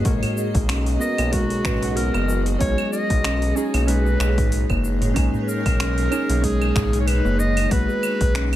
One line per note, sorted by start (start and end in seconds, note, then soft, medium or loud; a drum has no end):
0.00 0.99 B3 loud
0.00 0.05 F#4 loud
0.00 3.50 F#4 medium
0.00 8.56 G#4 medium
0.00 0.07 A#4 loud
0.00 1.66 B4 loud
0.00 3.72 D#5 medium
0.05 0.20 B1 loud
0.05 0.22 G#3 medium
0.05 0.97 F#4 medium
0.05 0.98 A#4 loud
0.05 kick loud
0.05 open hi-hat medium
0.05 shaker soft
0.23 0.31 G#4 medium
0.23 open hi-hat soft
0.23 darbuka dum loud
0.23 claves medium
0.23 shaker soft
0.37 shaker medium
0.54 0.97 B1 medium
0.54 kick loud
0.54 open hi-hat soft
0.54 darbuka ka soft
0.54 darbuka tek medium
0.54 shaker soft
0.69 1.17 C#4 loud
0.69 finger snap medium
0.69 open hi-hat medium
0.69 claves medium
0.69 shaker medium
0.86 open hi-hat soft
0.86 shaker soft
0.99 1.29 B3 loud
0.99 1.29 F#4 medium
0.99 1.30 A#4 loud
0.99 1.34 D#5 loud
0.99 shaker medium
1.18 1.61 B1 medium
1.18 1.27 A#3 medium
1.18 open hi-hat soft
1.18 darbuka ka medium
1.18 darbuka tek soft
1.18 claves medium
1.18 shaker soft
1.32 1.50 G#3 loud
1.32 1.61 B3 medium
1.32 1.98 F#4 loud
1.32 1.62 F#4 medium
1.32 1.62 A#4 loud
1.32 kick medium
1.32 open hi-hat medium
1.32 shaker soft
1.50 1.59 G#4 medium
1.50 open hi-hat soft
1.50 shaker soft
1.64 2.10 B1 loud
1.64 1.78 B3 medium
1.64 1.82 C#4 medium
1.64 1.78 F#4 medium
1.64 1.79 B4 medium
1.64 finger snap medium
1.64 kick loud
1.64 darbuka dum medium
1.64 claves medium
1.64 shaker medium
1.82 2.57 F#4 medium
1.82 2.58 F#5 medium
1.82 open hi-hat soft
1.82 darbuka tek medium
1.82 shaker soft
1.96 2.13 B3 medium
1.96 2.46 A#4 loud
1.96 open hi-hat medium
1.96 shaker soft
2.14 2.57 F#1 loud
2.14 2.27 B3 medium
2.14 darbuka ka soft
2.14 darbuka tek medium
2.14 claves medium
2.14 shaker soft
2.29 2.44 F#3 medium
2.29 shaker medium
2.46 open hi-hat soft
2.46 shaker soft
2.58 2.75 B1 loud
2.58 2.77 G#3 medium
2.58 3.52 C#4 loud
2.58 3.53 D#4 medium
2.58 2.90 C#5 loud
2.58 kick loud
2.58 open hi-hat soft
2.58 shaker soft
2.63 3.54 G#4 loud
2.78 2.86 G#4 medium
2.78 claves medium
2.78 shaker soft
2.92 8.52 D#4 medium
2.92 3.58 D#5 loud
2.92 shaker medium
3.09 3.53 B1 medium
3.09 kick loud
3.09 open hi-hat soft
3.09 darbuka ka soft
3.09 darbuka tek medium
3.09 shaker soft
3.24 3.72 C#4 loud
3.24 finger snap medium
3.24 open hi-hat medium
3.24 claves medium
3.24 shaker soft
3.42 8.56 C#5 medium
3.42 open hi-hat soft
3.42 shaker soft
3.55 3.84 C#4 loud
3.55 3.85 D#4 medium
3.55 3.90 G#4 loud
3.55 3.85 G#4 loud
3.55 shaker medium
3.74 4.16 B1 medium
3.74 3.82 A#3 medium
3.74 open hi-hat soft
3.74 darbuka ka medium
3.74 darbuka tek soft
3.74 claves medium
3.74 shaker soft
3.86 4.05 G#3 medium
3.86 5.12 C#4 medium
3.86 5.12 D#4 medium
3.86 4.84 B4 loud
3.86 open hi-hat medium
3.86 shaker soft
3.90 5.14 G#4 medium
4.06 4.14 G#4 medium
4.06 darbuka ka soft
4.06 shaker soft
4.20 4.65 B1 loud
4.20 finger snap medium
4.20 darbuka tek medium
4.20 claves medium
4.20 shaker medium
4.38 4.68 D#4 medium
4.38 kick loud
4.38 open hi-hat soft
4.38 darbuka tek medium
4.38 darbuka dum medium
4.38 shaker soft
4.52 open hi-hat soft
4.52 shaker soft
4.70 5.12 F#1 loud
4.70 4.83 A#3 loud
4.70 kick medium
4.70 darbuka ka medium
4.70 claves medium
4.70 shaker soft
4.84 shaker medium
5.01 5.10 A#3 medium
5.01 open hi-hat soft
5.01 darbuka dum medium
5.01 shaker soft
5.14 5.31 B1 loud
5.14 5.33 G#3 medium
5.14 6.07 C#4 loud
5.14 6.08 D#4 medium
5.14 kick loud
5.14 open hi-hat medium
5.14 claves medium
5.14 shaker soft
5.18 6.09 G#4 loud
5.33 5.42 G#4 medium
5.33 darbuka dum loud
5.33 shaker soft
5.43 5.50 B4 medium
5.49 6.43 A#4 loud
5.49 shaker medium
5.66 6.08 B1 loud
5.66 kick loud
5.66 open hi-hat soft
5.66 darbuka ka soft
5.66 darbuka tek medium
5.66 claves medium
5.66 shaker soft
5.80 6.27 C#4 medium
5.80 finger snap medium
5.80 open hi-hat medium
5.80 shaker soft
5.98 open hi-hat soft
5.98 shaker soft
6.11 6.40 C#4 loud
6.11 6.40 D#4 medium
6.11 6.41 G#4 loud
6.11 claves medium
6.11 shaker medium
6.29 6.72 B1 medium
6.29 6.37 A#3 medium
6.29 open hi-hat soft
6.29 darbuka ka medium
6.29 shaker soft
6.41 6.60 G#3 loud
6.41 7.67 C#4 medium
6.41 7.68 D#4 medium
6.41 6.97 G#4 loud
6.41 kick medium
6.41 open hi-hat medium
6.41 shaker soft
6.45 7.69 G#4 loud
6.61 6.69 G#4 medium
6.61 claves medium
6.61 shaker soft
6.76 7.21 B1 loud
6.76 finger snap medium
6.76 kick loud
6.76 darbuka dum medium
6.76 shaker medium
6.93 7.23 D#4 medium
6.93 open hi-hat soft
6.93 darbuka tek medium
6.93 shaker soft
7.01 7.09 C#5 medium
7.07 7.41 B4 loud
7.07 open hi-hat soft
7.07 claves medium
7.07 shaker soft
7.25 7.67 F#1 loud
7.25 7.38 A#3 loud
7.25 darbuka ka medium
7.25 darbuka tek medium
7.25 shaker soft
7.39 7.73 D#5 loud
7.39 shaker medium
7.57 7.65 A#3 medium
7.57 open hi-hat soft
7.57 claves medium
7.57 shaker soft
7.69 7.86 B1 loud
7.69 7.88 G#3 medium
7.69 8.56 B3 loud
7.69 8.56 F#4 medium
7.69 8.56 B4 loud
7.69 kick loud
7.69 open hi-hat medium
7.69 shaker soft
7.73 8.56 B4 loud
7.79 8.56 F#4 medium
7.88 7.97 G#4 medium
7.88 shaker soft
8.03 claves medium
8.03 shaker medium
8.20 8.56 B1 loud
8.20 kick loud
8.20 open hi-hat soft
8.20 darbuka ka medium
8.20 darbuka tek medium
8.20 shaker soft
8.35 8.56 C#4 medium
8.35 finger snap medium
8.35 open hi-hat medium
8.35 shaker soft
8.53 open hi-hat soft
8.53 claves medium